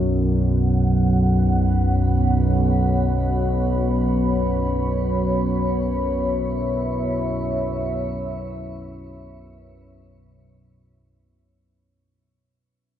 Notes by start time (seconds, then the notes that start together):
Already playing: B1 F#2 B3 F#4 C#5 F#5
1.61 B5
5.45 E5